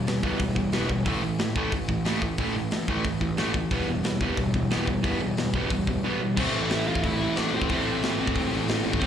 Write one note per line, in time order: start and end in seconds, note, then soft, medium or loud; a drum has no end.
0.07 0.22 E2 medium
0.07 0.19 E2 medium
0.07 0.22 B2 medium
0.07 0.22 E3 medium
0.07 0.22 G3 medium
0.07 snare loud
0.07 open hi-hat medium
0.23 0.35 E1 medium
0.23 0.39 E2 medium
0.23 0.39 B2 medium
0.23 0.39 E3 medium
0.23 0.40 G3 loud
0.23 0.40 B3 loud
0.23 kick medium
0.39 0.51 E1 medium
0.39 0.55 E2 medium
0.39 0.55 B2 medium
0.39 0.54 E3 medium
0.39 0.55 G3 medium
0.39 kick loud
0.39 open hi-hat medium
0.55 0.68 E1 medium
0.55 0.72 E2 medium
0.55 0.72 B2 medium
0.55 0.71 E3 medium
0.55 0.71 G3 medium
0.55 kick medium
0.72 1.06 E1 medium
0.72 0.88 E2 medium
0.72 0.88 B2 medium
0.72 0.89 E3 medium
0.72 0.88 G3 medium
0.72 0.89 B3 medium
0.72 snare loud
0.72 open hi-hat medium
0.88 1.04 E2 medium
0.88 1.05 B2 medium
0.88 1.04 E3 medium
0.88 1.04 G3 medium
0.88 kick medium
1.06 1.18 A1 medium
1.06 1.21 A2 medium
1.06 1.21 E3 medium
1.06 1.22 A3 medium
1.06 kick loud
1.06 open hi-hat medium
1.22 1.34 A1 medium
1.22 1.37 A2 medium
1.22 1.38 E3 medium
1.38 1.54 A2 medium
1.38 1.51 A2 medium
1.38 1.54 E3 medium
1.38 snare loud
1.38 open hi-hat medium
1.56 1.68 A1 medium
1.56 1.71 A2 medium
1.56 1.71 E3 medium
1.56 1.72 A3 medium
1.56 kick medium
1.72 1.84 A1 medium
1.72 1.87 A2 medium
1.72 1.87 E3 medium
1.72 kick loud
1.72 open hi-hat medium
1.88 2.01 A1 medium
1.88 2.03 A2 medium
1.88 2.04 E3 medium
1.88 kick medium
2.05 2.29 A1 medium
2.05 2.21 A2 medium
2.05 2.21 E3 medium
2.05 2.21 A3 loud
2.05 snare loud
2.05 open hi-hat medium
2.22 2.37 A2 medium
2.22 2.38 E3 medium
2.22 kick medium
2.38 2.50 A1 medium
2.38 2.55 A2 medium
2.38 2.55 E3 medium
2.38 2.55 A3 medium
2.38 kick loud
2.38 open hi-hat medium
2.55 2.67 A1 medium
2.55 2.70 A2 medium
2.55 2.71 E3 medium
2.71 2.84 A2 medium
2.71 2.87 A2 medium
2.71 2.88 E3 medium
2.71 snare loud
2.71 open hi-hat medium
2.88 3.00 A1 medium
2.88 3.04 A2 medium
2.88 3.04 E3 medium
2.88 3.05 A3 medium
2.88 kick medium
3.04 3.16 A1 medium
3.04 3.20 A2 medium
3.04 3.21 E3 medium
3.04 kick loud
3.04 open hi-hat medium
3.21 3.33 A1 medium
3.21 3.37 A2 medium
3.21 3.37 E3 medium
3.21 kick medium
3.37 3.61 A1 medium
3.37 3.53 A2 medium
3.37 3.54 E3 medium
3.37 3.54 A3 medium
3.37 snare loud
3.37 open hi-hat medium
3.54 3.70 A2 medium
3.54 3.70 E3 medium
3.54 kick medium
3.71 3.83 E1 medium
3.71 3.87 E2 medium
3.71 3.87 B2 medium
3.71 3.87 E3 loud
3.71 3.87 G3 medium
3.71 3.87 B3 loud
3.71 kick loud
3.71 open hi-hat medium
3.88 4.00 E1 loud
3.88 4.02 E2 medium
3.88 4.03 B2 medium
3.88 4.03 E3 medium
3.88 4.03 G3 medium
4.03 4.19 E2 medium
4.03 4.16 E2 medium
4.03 4.19 B2 medium
4.03 4.20 E3 medium
4.03 4.20 G3 medium
4.03 snare loud
4.03 open hi-hat medium
4.21 4.33 E1 medium
4.21 4.36 E2 medium
4.21 4.36 B2 medium
4.21 4.37 E3 medium
4.21 4.38 G3 loud
4.21 4.38 B3 loud
4.21 kick medium
4.37 4.49 E1 medium
4.37 4.52 E2 medium
4.37 4.52 B2 medium
4.37 4.53 E3 medium
4.37 4.53 G3 medium
4.37 kick loud
4.37 open hi-hat medium
4.54 4.66 E1 medium
4.54 4.69 E2 medium
4.54 4.69 B2 medium
4.54 4.70 E3 medium
4.54 4.70 G3 medium
4.54 kick medium
4.70 4.94 E1 medium
4.70 4.85 E2 medium
4.70 4.86 B2 medium
4.70 4.87 E3 medium
4.70 4.87 G3 medium
4.70 4.87 B3 loud
4.70 snare loud
4.70 open hi-hat medium
4.86 5.02 E2 medium
4.86 5.02 B2 medium
4.86 5.02 E3 medium
4.86 5.03 G3 medium
4.86 kick medium
5.04 5.16 E1 loud
5.04 5.19 E2 medium
5.04 5.20 B2 medium
5.04 5.20 E3 loud
5.04 5.20 G3 medium
5.04 5.20 B3 medium
5.04 kick loud
5.04 open hi-hat medium
5.20 5.32 E1 medium
5.20 5.36 E2 medium
5.20 5.36 B2 medium
5.20 5.36 E3 medium
5.20 5.36 G3 medium
5.37 5.49 E2 medium
5.37 5.53 E2 medium
5.37 5.53 B2 medium
5.37 5.53 E3 medium
5.37 5.53 G3 medium
5.37 snare loud
5.37 open hi-hat medium
5.53 5.65 E1 medium
5.53 5.70 E2 medium
5.53 5.70 B2 medium
5.53 5.70 E3 loud
5.53 5.70 G3 loud
5.53 5.71 B3 loud
5.53 kick medium
5.70 5.82 E1 medium
5.70 5.86 E2 medium
5.70 5.86 B2 medium
5.70 5.86 E3 medium
5.70 5.86 G3 medium
5.70 kick loud
5.70 open hi-hat medium
5.87 5.99 E1 medium
5.87 6.02 E2 medium
5.87 6.03 B2 medium
5.87 6.03 E3 medium
5.87 6.03 G3 medium
5.87 kick medium
6.03 6.19 E2 medium
6.03 6.20 B2 medium
6.03 6.20 E3 medium
6.03 6.20 G3 medium
6.03 6.20 B3 loud
6.21 6.35 E2 medium
6.21 6.36 B2 medium
6.21 6.36 E3 medium
6.21 6.36 G3 medium
6.37 6.51 A1 loud
6.37 7.19 A2 medium
6.37 7.21 E3 loud
6.37 7.19 A3 medium
6.37 6.60 C4 medium
6.37 7.72 C4 loud
6.37 7.73 E4 loud
6.37 6.63 C5 medium
6.37 kick loud
6.37 crash loud
6.54 6.68 A1 loud
6.63 6.86 E4 medium
6.63 6.87 E5 loud
6.70 6.84 A1 medium
6.70 snare loud
6.70 open hi-hat medium
6.87 7.01 A1 loud
6.87 7.03 F4 medium
6.87 7.03 F5 loud
6.95 kick medium
7.03 7.17 A1 medium
7.03 7.35 E4 medium
7.03 7.37 E5 loud
7.03 kick loud
7.03 open hi-hat medium
7.20 7.34 A1 medium
7.20 7.35 A2 medium
7.20 7.37 E3 medium
7.20 7.36 A3 medium
7.36 7.51 A1 loud
7.36 7.68 A2 medium
7.36 7.70 E3 medium
7.36 7.69 A3 medium
7.36 7.52 D4 medium
7.36 7.54 D5 loud
7.36 snare loud
7.36 open hi-hat medium
7.54 7.67 A1 medium
7.54 8.83 C4 medium
7.54 8.86 C5 loud
7.62 kick medium
7.69 7.84 A1 loud
7.69 8.51 A2 medium
7.69 8.52 E3 loud
7.69 8.51 A3 loud
7.69 9.03 C4 loud
7.69 kick loud
7.69 open hi-hat medium
7.74 9.03 E4 loud
7.87 8.00 A1 loud
8.03 8.17 A1 medium
8.03 snare loud
8.03 open hi-hat medium
8.19 8.33 A1 loud
8.27 kick medium
8.35 8.50 A1 medium
8.35 kick loud
8.35 open hi-hat medium
8.52 8.66 A1 medium
8.52 8.68 A2 medium
8.52 8.69 E3 medium
8.52 8.68 A3 medium
8.68 8.83 A1 loud
8.68 9.01 A2 medium
8.68 9.02 E3 medium
8.68 9.03 A3 medium
8.68 snare loud
8.68 open hi-hat medium
8.85 8.99 A1 loud
8.93 kick medium
9.00 9.07 C2 loud
9.00 9.07 C3 medium
9.00 9.07 G3 loud
9.00 9.07 C4 medium
9.00 9.07 C5 loud
9.00 kick loud
9.00 open hi-hat medium